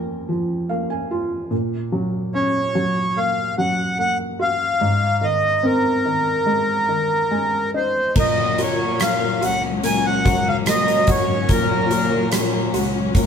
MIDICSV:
0, 0, Header, 1, 7, 480
1, 0, Start_track
1, 0, Tempo, 825309
1, 881, Time_signature, 4, 2, 24, 8
1, 3282, Tempo, 834492
1, 7665, End_track
2, 0, Start_track
2, 0, Title_t, "Accordion"
2, 0, Program_c, 0, 21
2, 1365, Note_on_c, 0, 73, 72
2, 1846, Note_on_c, 0, 77, 75
2, 1856, Note_off_c, 0, 73, 0
2, 2066, Note_off_c, 0, 77, 0
2, 2083, Note_on_c, 0, 78, 73
2, 2315, Note_off_c, 0, 78, 0
2, 2324, Note_on_c, 0, 78, 81
2, 2431, Note_off_c, 0, 78, 0
2, 2569, Note_on_c, 0, 77, 89
2, 3046, Note_on_c, 0, 75, 73
2, 3059, Note_off_c, 0, 77, 0
2, 3288, Note_on_c, 0, 70, 70
2, 3291, Note_off_c, 0, 75, 0
2, 4470, Note_off_c, 0, 70, 0
2, 4502, Note_on_c, 0, 72, 60
2, 4721, Note_off_c, 0, 72, 0
2, 4750, Note_on_c, 0, 75, 73
2, 4989, Note_off_c, 0, 75, 0
2, 4995, Note_on_c, 0, 73, 66
2, 5226, Note_on_c, 0, 77, 70
2, 5232, Note_off_c, 0, 73, 0
2, 5467, Note_off_c, 0, 77, 0
2, 5469, Note_on_c, 0, 78, 79
2, 5574, Note_off_c, 0, 78, 0
2, 5702, Note_on_c, 0, 80, 75
2, 5822, Note_off_c, 0, 80, 0
2, 5823, Note_on_c, 0, 78, 84
2, 6065, Note_off_c, 0, 78, 0
2, 6065, Note_on_c, 0, 77, 79
2, 6117, Note_off_c, 0, 77, 0
2, 6183, Note_on_c, 0, 75, 81
2, 6423, Note_off_c, 0, 75, 0
2, 6424, Note_on_c, 0, 73, 75
2, 6661, Note_on_c, 0, 70, 64
2, 6662, Note_off_c, 0, 73, 0
2, 7107, Note_off_c, 0, 70, 0
2, 7665, End_track
3, 0, Start_track
3, 0, Title_t, "Clean electric guitar"
3, 0, Program_c, 1, 27
3, 4727, Note_on_c, 1, 46, 65
3, 4730, Note_on_c, 1, 70, 55
3, 4852, Note_on_c, 1, 66, 44
3, 4970, Note_off_c, 1, 70, 0
3, 4972, Note_on_c, 1, 70, 51
3, 5084, Note_off_c, 1, 66, 0
3, 5091, Note_on_c, 1, 66, 45
3, 5208, Note_on_c, 1, 54, 53
3, 5326, Note_off_c, 1, 70, 0
3, 5329, Note_on_c, 1, 70, 46
3, 5443, Note_off_c, 1, 66, 0
3, 5450, Note_on_c, 1, 66, 47
3, 5573, Note_on_c, 1, 61, 46
3, 5685, Note_off_c, 1, 46, 0
3, 5692, Note_on_c, 1, 46, 60
3, 5693, Note_off_c, 1, 70, 0
3, 5696, Note_on_c, 1, 70, 53
3, 5805, Note_off_c, 1, 66, 0
3, 5811, Note_on_c, 1, 66, 44
3, 5927, Note_off_c, 1, 70, 0
3, 5929, Note_on_c, 1, 70, 52
3, 6042, Note_off_c, 1, 66, 0
3, 6049, Note_on_c, 1, 66, 44
3, 6161, Note_off_c, 1, 54, 0
3, 6168, Note_on_c, 1, 54, 53
3, 6285, Note_off_c, 1, 70, 0
3, 6287, Note_on_c, 1, 70, 50
3, 6401, Note_off_c, 1, 66, 0
3, 6408, Note_on_c, 1, 66, 46
3, 6520, Note_off_c, 1, 61, 0
3, 6527, Note_on_c, 1, 61, 48
3, 6636, Note_off_c, 1, 46, 0
3, 6643, Note_on_c, 1, 46, 70
3, 6645, Note_off_c, 1, 70, 0
3, 6647, Note_on_c, 1, 70, 60
3, 6760, Note_off_c, 1, 66, 0
3, 6767, Note_on_c, 1, 66, 49
3, 6885, Note_off_c, 1, 70, 0
3, 6887, Note_on_c, 1, 70, 54
3, 6999, Note_off_c, 1, 66, 0
3, 7006, Note_on_c, 1, 66, 50
3, 7122, Note_off_c, 1, 54, 0
3, 7128, Note_on_c, 1, 54, 61
3, 7244, Note_off_c, 1, 70, 0
3, 7246, Note_on_c, 1, 70, 51
3, 7358, Note_off_c, 1, 66, 0
3, 7364, Note_on_c, 1, 66, 51
3, 7474, Note_off_c, 1, 61, 0
3, 7481, Note_on_c, 1, 61, 46
3, 7594, Note_off_c, 1, 46, 0
3, 7601, Note_off_c, 1, 70, 0
3, 7601, Note_on_c, 1, 46, 62
3, 7604, Note_on_c, 1, 70, 55
3, 7665, Note_off_c, 1, 46, 0
3, 7665, Note_off_c, 1, 54, 0
3, 7665, Note_off_c, 1, 61, 0
3, 7665, Note_off_c, 1, 66, 0
3, 7665, Note_off_c, 1, 70, 0
3, 7665, End_track
4, 0, Start_track
4, 0, Title_t, "Felt piano"
4, 0, Program_c, 2, 0
4, 0, Control_c, 2, 64, 127
4, 0, Note_on_c, 2, 41, 48
4, 0, Note_on_c, 2, 53, 37
4, 0, Note_on_c, 2, 58, 40
4, 0, Note_on_c, 2, 61, 42
4, 158, Note_off_c, 2, 53, 0
4, 167, Note_on_c, 2, 53, 39
4, 376, Note_off_c, 2, 61, 0
4, 398, Note_off_c, 2, 58, 0
4, 404, Note_on_c, 2, 77, 47
4, 407, Note_on_c, 2, 58, 41
4, 514, Note_off_c, 2, 77, 0
4, 524, Note_on_c, 2, 80, 54
4, 645, Note_on_c, 2, 65, 45
4, 858, Note_off_c, 2, 80, 0
4, 860, Note_off_c, 2, 41, 0
4, 861, Note_off_c, 2, 53, 0
4, 868, Note_off_c, 2, 58, 0
4, 875, Note_off_c, 2, 65, 0
4, 876, Note_on_c, 2, 46, 50
4, 887, Control_c, 2, 64, 0
4, 997, Control_c, 2, 64, 127
4, 1118, Note_on_c, 2, 54, 40
4, 1362, Note_on_c, 2, 61, 43
4, 1592, Note_off_c, 2, 54, 0
4, 1600, Note_on_c, 2, 54, 38
4, 1841, Note_on_c, 2, 58, 39
4, 2075, Note_off_c, 2, 54, 0
4, 2083, Note_on_c, 2, 54, 39
4, 2297, Note_off_c, 2, 61, 0
4, 2310, Note_off_c, 2, 58, 0
4, 2319, Note_on_c, 2, 58, 35
4, 2555, Note_on_c, 2, 66, 44
4, 2773, Note_off_c, 2, 46, 0
4, 2779, Note_off_c, 2, 54, 0
4, 2784, Note_off_c, 2, 58, 0
4, 2790, Note_off_c, 2, 66, 0
4, 2796, Note_on_c, 2, 44, 48
4, 2806, Control_c, 2, 64, 0
4, 2908, Control_c, 2, 64, 127
4, 3032, Note_on_c, 2, 51, 39
4, 3275, Note_on_c, 2, 60, 46
4, 3509, Note_off_c, 2, 51, 0
4, 3518, Note_on_c, 2, 51, 38
4, 3753, Note_on_c, 2, 56, 37
4, 3988, Note_off_c, 2, 51, 0
4, 3996, Note_on_c, 2, 51, 41
4, 4220, Note_off_c, 2, 60, 0
4, 4234, Note_off_c, 2, 56, 0
4, 4241, Note_on_c, 2, 80, 49
4, 4242, Note_on_c, 2, 56, 37
4, 4469, Note_off_c, 2, 80, 0
4, 4489, Note_on_c, 2, 63, 44
4, 4490, Note_on_c, 2, 75, 51
4, 4706, Note_off_c, 2, 51, 0
4, 4707, Note_off_c, 2, 44, 0
4, 4715, Note_off_c, 2, 56, 0
4, 4715, Note_off_c, 2, 75, 0
4, 4724, Note_off_c, 2, 63, 0
4, 4727, Note_on_c, 2, 58, 58
4, 4739, Control_c, 2, 64, 0
4, 4839, Control_c, 2, 64, 127
4, 4974, Note_on_c, 2, 66, 38
4, 5204, Note_off_c, 2, 58, 0
4, 5212, Note_on_c, 2, 58, 45
4, 5441, Note_off_c, 2, 66, 0
4, 5449, Note_on_c, 2, 66, 41
4, 5683, Note_off_c, 2, 58, 0
4, 5692, Note_on_c, 2, 58, 39
4, 5925, Note_off_c, 2, 66, 0
4, 5934, Note_on_c, 2, 66, 44
4, 6169, Note_off_c, 2, 58, 0
4, 6177, Note_on_c, 2, 58, 42
4, 6404, Note_off_c, 2, 66, 0
4, 6412, Note_on_c, 2, 66, 47
4, 6638, Note_off_c, 2, 58, 0
4, 6647, Note_on_c, 2, 58, 58
4, 6874, Note_off_c, 2, 66, 0
4, 6882, Note_on_c, 2, 66, 39
4, 7114, Note_off_c, 2, 58, 0
4, 7123, Note_on_c, 2, 58, 50
4, 7353, Note_off_c, 2, 66, 0
4, 7362, Note_on_c, 2, 66, 48
4, 7589, Note_off_c, 2, 58, 0
4, 7598, Note_on_c, 2, 58, 46
4, 7665, Note_off_c, 2, 58, 0
4, 7665, Note_off_c, 2, 66, 0
4, 7665, End_track
5, 0, Start_track
5, 0, Title_t, "String section"
5, 0, Program_c, 3, 48
5, 4729, Note_on_c, 3, 54, 51
5, 4730, Note_on_c, 3, 58, 45
5, 4733, Note_on_c, 3, 61, 52
5, 7665, Note_off_c, 3, 54, 0
5, 7665, Note_off_c, 3, 58, 0
5, 7665, Note_off_c, 3, 61, 0
5, 7665, End_track
6, 0, Start_track
6, 0, Title_t, "Cello section"
6, 0, Program_c, 4, 48
6, 4729, Note_on_c, 4, 46, 76
6, 5430, Note_off_c, 4, 46, 0
6, 5454, Note_on_c, 4, 37, 79
6, 5911, Note_off_c, 4, 37, 0
6, 5935, Note_on_c, 4, 37, 70
6, 6389, Note_off_c, 4, 37, 0
6, 6408, Note_on_c, 4, 44, 73
6, 6630, Note_off_c, 4, 44, 0
6, 6648, Note_on_c, 4, 46, 89
6, 7340, Note_off_c, 4, 46, 0
6, 7363, Note_on_c, 4, 37, 75
6, 7665, Note_off_c, 4, 37, 0
6, 7665, End_track
7, 0, Start_track
7, 0, Title_t, "Drums"
7, 4727, Note_on_c, 9, 49, 67
7, 4729, Note_on_c, 9, 36, 80
7, 4784, Note_off_c, 9, 49, 0
7, 4786, Note_off_c, 9, 36, 0
7, 4974, Note_on_c, 9, 42, 55
7, 5031, Note_off_c, 9, 42, 0
7, 5211, Note_on_c, 9, 42, 77
7, 5217, Note_on_c, 9, 37, 98
7, 5268, Note_off_c, 9, 42, 0
7, 5274, Note_off_c, 9, 37, 0
7, 5457, Note_on_c, 9, 42, 58
7, 5514, Note_off_c, 9, 42, 0
7, 5693, Note_on_c, 9, 42, 65
7, 5751, Note_off_c, 9, 42, 0
7, 5935, Note_on_c, 9, 36, 74
7, 5936, Note_on_c, 9, 42, 54
7, 5993, Note_off_c, 9, 36, 0
7, 5994, Note_off_c, 9, 42, 0
7, 6168, Note_on_c, 9, 42, 82
7, 6174, Note_on_c, 9, 37, 92
7, 6225, Note_off_c, 9, 42, 0
7, 6232, Note_off_c, 9, 37, 0
7, 6294, Note_on_c, 9, 42, 48
7, 6352, Note_off_c, 9, 42, 0
7, 6404, Note_on_c, 9, 42, 64
7, 6408, Note_on_c, 9, 36, 68
7, 6461, Note_off_c, 9, 42, 0
7, 6465, Note_off_c, 9, 36, 0
7, 6644, Note_on_c, 9, 42, 71
7, 6646, Note_on_c, 9, 36, 83
7, 6701, Note_off_c, 9, 42, 0
7, 6704, Note_off_c, 9, 36, 0
7, 6885, Note_on_c, 9, 42, 59
7, 6942, Note_off_c, 9, 42, 0
7, 7120, Note_on_c, 9, 42, 85
7, 7126, Note_on_c, 9, 37, 96
7, 7177, Note_off_c, 9, 42, 0
7, 7183, Note_off_c, 9, 37, 0
7, 7364, Note_on_c, 9, 42, 61
7, 7421, Note_off_c, 9, 42, 0
7, 7599, Note_on_c, 9, 36, 71
7, 7599, Note_on_c, 9, 42, 76
7, 7656, Note_off_c, 9, 36, 0
7, 7656, Note_off_c, 9, 42, 0
7, 7665, End_track
0, 0, End_of_file